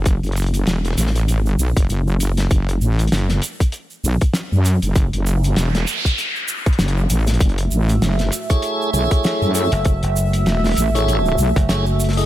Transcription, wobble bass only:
0, 0, Header, 1, 2, 480
1, 0, Start_track
1, 0, Key_signature, 3, "minor"
1, 0, Tempo, 612245
1, 45, Time_signature, 4, 2, 24, 8
1, 9609, End_track
2, 0, Start_track
2, 0, Title_t, "Wobble bass"
2, 0, Program_c, 0, 39
2, 0, Note_on_c, 0, 30, 91
2, 161, Note_off_c, 0, 30, 0
2, 182, Note_on_c, 0, 30, 98
2, 508, Note_off_c, 0, 30, 0
2, 525, Note_on_c, 0, 28, 97
2, 749, Note_off_c, 0, 28, 0
2, 765, Note_on_c, 0, 33, 101
2, 1095, Note_off_c, 0, 33, 0
2, 1095, Note_on_c, 0, 32, 101
2, 1229, Note_off_c, 0, 32, 0
2, 1244, Note_on_c, 0, 35, 103
2, 1361, Note_off_c, 0, 35, 0
2, 1385, Note_on_c, 0, 30, 92
2, 1470, Note_off_c, 0, 30, 0
2, 1485, Note_on_c, 0, 30, 97
2, 1949, Note_off_c, 0, 30, 0
2, 1966, Note_on_c, 0, 30, 95
2, 2189, Note_off_c, 0, 30, 0
2, 2204, Note_on_c, 0, 33, 99
2, 2429, Note_off_c, 0, 33, 0
2, 2445, Note_on_c, 0, 30, 95
2, 2669, Note_off_c, 0, 30, 0
2, 3166, Note_on_c, 0, 35, 98
2, 3282, Note_off_c, 0, 35, 0
2, 3545, Note_on_c, 0, 42, 97
2, 3762, Note_off_c, 0, 42, 0
2, 3785, Note_on_c, 0, 30, 95
2, 4002, Note_off_c, 0, 30, 0
2, 4026, Note_on_c, 0, 30, 101
2, 4350, Note_off_c, 0, 30, 0
2, 4367, Note_on_c, 0, 28, 97
2, 4590, Note_off_c, 0, 28, 0
2, 5327, Note_on_c, 0, 30, 95
2, 5550, Note_off_c, 0, 30, 0
2, 5566, Note_on_c, 0, 33, 94
2, 5790, Note_off_c, 0, 33, 0
2, 5806, Note_on_c, 0, 30, 100
2, 6030, Note_off_c, 0, 30, 0
2, 6047, Note_on_c, 0, 33, 89
2, 6270, Note_off_c, 0, 33, 0
2, 6287, Note_on_c, 0, 30, 99
2, 6510, Note_off_c, 0, 30, 0
2, 7006, Note_on_c, 0, 35, 101
2, 7122, Note_off_c, 0, 35, 0
2, 7385, Note_on_c, 0, 42, 98
2, 7602, Note_off_c, 0, 42, 0
2, 8207, Note_on_c, 0, 28, 100
2, 8430, Note_off_c, 0, 28, 0
2, 8446, Note_on_c, 0, 33, 101
2, 8909, Note_off_c, 0, 33, 0
2, 8926, Note_on_c, 0, 35, 102
2, 9042, Note_off_c, 0, 35, 0
2, 9609, End_track
0, 0, End_of_file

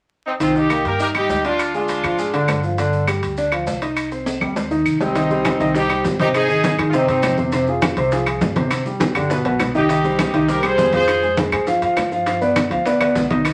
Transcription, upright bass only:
0, 0, Header, 1, 2, 480
1, 0, Start_track
1, 0, Key_signature, -3, "minor"
1, 0, Tempo, 296443
1, 656, Time_signature, 4, 2, 24, 8
1, 21911, End_track
2, 0, Start_track
2, 0, Title_t, "Upright bass"
2, 0, Program_c, 0, 32
2, 646, Note_on_c, 0, 36, 80
2, 1321, Note_off_c, 0, 36, 0
2, 1369, Note_on_c, 0, 43, 81
2, 2043, Note_off_c, 0, 43, 0
2, 2091, Note_on_c, 0, 38, 74
2, 3207, Note_off_c, 0, 38, 0
2, 3297, Note_on_c, 0, 44, 78
2, 3969, Note_off_c, 0, 44, 0
2, 4022, Note_on_c, 0, 43, 81
2, 5134, Note_off_c, 0, 43, 0
2, 5219, Note_on_c, 0, 38, 82
2, 5891, Note_off_c, 0, 38, 0
2, 5937, Note_on_c, 0, 36, 74
2, 7052, Note_off_c, 0, 36, 0
2, 7132, Note_on_c, 0, 39, 84
2, 7808, Note_off_c, 0, 39, 0
2, 7856, Note_on_c, 0, 36, 71
2, 8971, Note_off_c, 0, 36, 0
2, 9059, Note_on_c, 0, 36, 78
2, 9731, Note_off_c, 0, 36, 0
2, 9785, Note_on_c, 0, 32, 78
2, 10895, Note_off_c, 0, 32, 0
2, 10981, Note_on_c, 0, 44, 80
2, 11428, Note_off_c, 0, 44, 0
2, 11461, Note_on_c, 0, 43, 63
2, 11685, Note_off_c, 0, 43, 0
2, 11700, Note_on_c, 0, 41, 78
2, 12812, Note_off_c, 0, 41, 0
2, 12898, Note_on_c, 0, 36, 85
2, 13569, Note_off_c, 0, 36, 0
2, 13614, Note_on_c, 0, 31, 79
2, 14728, Note_off_c, 0, 31, 0
2, 14818, Note_on_c, 0, 31, 83
2, 15265, Note_off_c, 0, 31, 0
2, 15295, Note_on_c, 0, 35, 64
2, 15520, Note_off_c, 0, 35, 0
2, 15535, Note_on_c, 0, 36, 72
2, 16648, Note_off_c, 0, 36, 0
2, 16731, Note_on_c, 0, 36, 78
2, 17404, Note_off_c, 0, 36, 0
2, 17451, Note_on_c, 0, 41, 77
2, 18565, Note_off_c, 0, 41, 0
2, 18657, Note_on_c, 0, 44, 83
2, 19103, Note_off_c, 0, 44, 0
2, 19135, Note_on_c, 0, 44, 66
2, 19359, Note_off_c, 0, 44, 0
2, 19380, Note_on_c, 0, 43, 73
2, 20489, Note_off_c, 0, 43, 0
2, 20573, Note_on_c, 0, 38, 83
2, 21244, Note_off_c, 0, 38, 0
2, 21291, Note_on_c, 0, 36, 76
2, 21911, Note_off_c, 0, 36, 0
2, 21911, End_track
0, 0, End_of_file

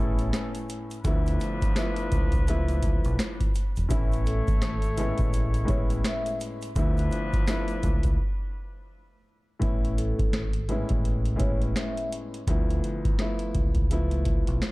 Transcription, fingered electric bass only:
0, 0, Header, 1, 2, 480
1, 0, Start_track
1, 0, Key_signature, 3, "major"
1, 0, Tempo, 714286
1, 702, Time_signature, 4, 2, 24, 8
1, 9890, End_track
2, 0, Start_track
2, 0, Title_t, "Fingered electric bass"
2, 0, Program_c, 0, 33
2, 0, Note_on_c, 0, 33, 90
2, 197, Note_off_c, 0, 33, 0
2, 705, Note_on_c, 0, 38, 114
2, 917, Note_off_c, 0, 38, 0
2, 1427, Note_on_c, 0, 37, 94
2, 2023, Note_off_c, 0, 37, 0
2, 2054, Note_on_c, 0, 35, 93
2, 2135, Note_off_c, 0, 35, 0
2, 2534, Note_on_c, 0, 28, 86
2, 2615, Note_off_c, 0, 28, 0
2, 2625, Note_on_c, 0, 33, 104
2, 2966, Note_off_c, 0, 33, 0
2, 3012, Note_on_c, 0, 32, 89
2, 3437, Note_off_c, 0, 32, 0
2, 3489, Note_on_c, 0, 33, 93
2, 3786, Note_off_c, 0, 33, 0
2, 3824, Note_on_c, 0, 33, 91
2, 4037, Note_off_c, 0, 33, 0
2, 4544, Note_on_c, 0, 38, 108
2, 4756, Note_off_c, 0, 38, 0
2, 5266, Note_on_c, 0, 37, 94
2, 5492, Note_off_c, 0, 37, 0
2, 6464, Note_on_c, 0, 33, 99
2, 6806, Note_off_c, 0, 33, 0
2, 6851, Note_on_c, 0, 32, 88
2, 7276, Note_off_c, 0, 32, 0
2, 7329, Note_on_c, 0, 33, 91
2, 7626, Note_off_c, 0, 33, 0
2, 7665, Note_on_c, 0, 33, 84
2, 7877, Note_off_c, 0, 33, 0
2, 8384, Note_on_c, 0, 38, 110
2, 8597, Note_off_c, 0, 38, 0
2, 9106, Note_on_c, 0, 37, 93
2, 9702, Note_off_c, 0, 37, 0
2, 9732, Note_on_c, 0, 35, 89
2, 9814, Note_off_c, 0, 35, 0
2, 9890, End_track
0, 0, End_of_file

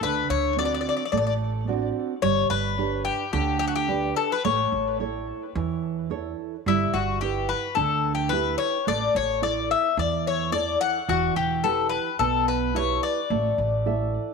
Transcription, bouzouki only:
0, 0, Header, 1, 2, 480
1, 0, Start_track
1, 0, Tempo, 553506
1, 18, Time_signature, 4, 2, 24, 8
1, 12435, End_track
2, 0, Start_track
2, 0, Title_t, "Bouzouki"
2, 0, Program_c, 0, 25
2, 26, Note_on_c, 0, 71, 100
2, 258, Note_off_c, 0, 71, 0
2, 261, Note_on_c, 0, 73, 94
2, 505, Note_off_c, 0, 73, 0
2, 509, Note_on_c, 0, 74, 86
2, 555, Note_off_c, 0, 74, 0
2, 566, Note_on_c, 0, 74, 59
2, 625, Note_off_c, 0, 74, 0
2, 645, Note_on_c, 0, 74, 65
2, 691, Note_off_c, 0, 74, 0
2, 701, Note_on_c, 0, 74, 58
2, 758, Note_off_c, 0, 74, 0
2, 770, Note_on_c, 0, 74, 62
2, 826, Note_off_c, 0, 74, 0
2, 838, Note_on_c, 0, 74, 53
2, 892, Note_off_c, 0, 74, 0
2, 914, Note_on_c, 0, 74, 59
2, 961, Note_off_c, 0, 74, 0
2, 971, Note_on_c, 0, 74, 60
2, 1008, Note_off_c, 0, 74, 0
2, 1018, Note_on_c, 0, 74, 68
2, 1080, Note_off_c, 0, 74, 0
2, 1098, Note_on_c, 0, 74, 58
2, 1153, Note_off_c, 0, 74, 0
2, 1928, Note_on_c, 0, 73, 106
2, 2165, Note_off_c, 0, 73, 0
2, 2168, Note_on_c, 0, 71, 97
2, 2618, Note_off_c, 0, 71, 0
2, 2642, Note_on_c, 0, 67, 85
2, 2872, Note_off_c, 0, 67, 0
2, 2887, Note_on_c, 0, 67, 84
2, 3106, Note_off_c, 0, 67, 0
2, 3116, Note_on_c, 0, 67, 84
2, 3182, Note_off_c, 0, 67, 0
2, 3187, Note_on_c, 0, 66, 74
2, 3253, Note_off_c, 0, 66, 0
2, 3257, Note_on_c, 0, 67, 84
2, 3590, Note_off_c, 0, 67, 0
2, 3611, Note_on_c, 0, 69, 83
2, 3737, Note_off_c, 0, 69, 0
2, 3748, Note_on_c, 0, 71, 83
2, 3852, Note_off_c, 0, 71, 0
2, 3856, Note_on_c, 0, 73, 87
2, 4302, Note_off_c, 0, 73, 0
2, 5792, Note_on_c, 0, 64, 80
2, 6015, Note_on_c, 0, 66, 77
2, 6030, Note_off_c, 0, 64, 0
2, 6238, Note_off_c, 0, 66, 0
2, 6252, Note_on_c, 0, 67, 71
2, 6477, Note_off_c, 0, 67, 0
2, 6493, Note_on_c, 0, 71, 78
2, 6717, Note_off_c, 0, 71, 0
2, 6720, Note_on_c, 0, 69, 80
2, 7061, Note_off_c, 0, 69, 0
2, 7065, Note_on_c, 0, 67, 75
2, 7191, Note_on_c, 0, 71, 86
2, 7204, Note_off_c, 0, 67, 0
2, 7436, Note_off_c, 0, 71, 0
2, 7439, Note_on_c, 0, 73, 86
2, 7695, Note_off_c, 0, 73, 0
2, 7701, Note_on_c, 0, 74, 97
2, 7941, Note_off_c, 0, 74, 0
2, 7945, Note_on_c, 0, 73, 89
2, 8164, Note_off_c, 0, 73, 0
2, 8178, Note_on_c, 0, 74, 89
2, 8417, Note_off_c, 0, 74, 0
2, 8421, Note_on_c, 0, 76, 85
2, 8642, Note_off_c, 0, 76, 0
2, 8666, Note_on_c, 0, 74, 94
2, 8884, Note_off_c, 0, 74, 0
2, 8909, Note_on_c, 0, 73, 88
2, 9123, Note_off_c, 0, 73, 0
2, 9126, Note_on_c, 0, 74, 101
2, 9370, Note_off_c, 0, 74, 0
2, 9373, Note_on_c, 0, 78, 99
2, 9619, Note_on_c, 0, 66, 100
2, 9622, Note_off_c, 0, 78, 0
2, 9850, Note_off_c, 0, 66, 0
2, 9854, Note_on_c, 0, 67, 83
2, 10092, Note_on_c, 0, 69, 87
2, 10102, Note_off_c, 0, 67, 0
2, 10311, Note_off_c, 0, 69, 0
2, 10315, Note_on_c, 0, 71, 84
2, 10548, Note_off_c, 0, 71, 0
2, 10573, Note_on_c, 0, 69, 89
2, 10798, Note_off_c, 0, 69, 0
2, 10823, Note_on_c, 0, 71, 86
2, 11067, Note_off_c, 0, 71, 0
2, 11067, Note_on_c, 0, 73, 94
2, 11285, Note_off_c, 0, 73, 0
2, 11300, Note_on_c, 0, 74, 82
2, 12435, Note_off_c, 0, 74, 0
2, 12435, End_track
0, 0, End_of_file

